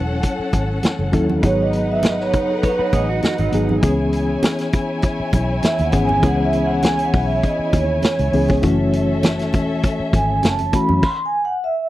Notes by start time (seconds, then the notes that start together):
Already playing: E1 F#3 C#4 E4 A4 F#5
0.23 kick, closed hi-hat
0.39 muted fingered electric bass stroke
0.53 G#1, kick, closed hi-hat, muted conga
0.83 snare, closed hi-hat, high conga
0.99 F#1, high conga
1.12 D#2 F#3 C#4 E4 A4, kick, closed hi-hat
1.30 high conga
1.42 G#1 F#3 B3 D#4 G#4 B4 C#5 F#5, kick, closed hi-hat, muted conga
1.62 D#5
1.73 closed hi-hat
1.91 E5
2.03 D#5, snare, closed hi-hat, high conga
2.20 C#5, snare
2.33 F#1, kick, closed hi-hat
2.51 A4
2.63 B4 C#5, kick, closed hi-hat
2.79 D#4 B4 C#5, muted fingered electric bass stroke
2.93 A1 B3 G#4 D#5, kick, closed hi-hat, muted conga
3.09 F#4
3.23 F#4, snare, closed hi-hat, high conga
3.38 G#1 F#3 D#4, closed hi-hat, high conga
3.52 G#1 F#3 B3 D#4 G#4, closed hi-hat
3.69 high conga
3.82 C#2 E3 B3 C#4 E4 G#4 C#5 G#5, kick, closed hi-hat, muted conga
4.13 closed hi-hat
4.43 snare, closed hi-hat, high conga
4.59 snare, closed hi-hat
4.73 kick, closed hi-hat, muted conga
5.02 kick, closed hi-hat
5.20 muted fingered electric bass stroke
5.33 B1, kick, closed hi-hat, muted conga
5.63 E5, snare, closed hi-hat, high conga
5.78 D#2, closed hi-hat, high conga
5.85 F#5
5.92 G#1 E3 B3 C#4 G#4, kick, closed hi-hat
6.05 G#5
6.09 high conga
6.22 C#2 E3 B3 C#4 G#4 F#5, kick, closed hi-hat, muted conga
6.45 E5
6.53 closed hi-hat
6.65 F#5
6.83 G#5, snare, closed hi-hat, high conga
6.99 closed hi-hat
7.05 F#5
7.13 B1, kick, open hi-hat
7.25 E5
7.43 D#5, kick, closed hi-hat
7.59 muted fingered electric bass stroke
7.73 D#2 C#5, kick, closed hi-hat, muted conga
8.02 snare, closed hi-hat, high conga
8.19 C#2, closed hi-hat, high conga
8.32 C#2 E3 B3 C#4 G#4, open hi-hat
8.49 kick, high conga
8.62 F#1 E3 A3 C#4 F#4 A4 E5, kick, closed hi-hat, muted conga
8.93 closed hi-hat
9.23 snare, closed hi-hat, high conga
9.39 snare, closed hi-hat
9.53 E1, kick, closed hi-hat, muted conga
9.83 kick, closed hi-hat
10.00 muted fingered electric bass stroke
10.13 G#1 G#5, kick, closed hi-hat, muted conga
10.43 F#1, snare, closed hi-hat, high conga
10.59 closed hi-hat, high conga
10.72 E3 A3 C#4 F#4 B5, kick, closed hi-hat
10.89 F#2, high conga
11.03 C6, kick, crash
11.26 G#5
11.45 F#5
11.64 E5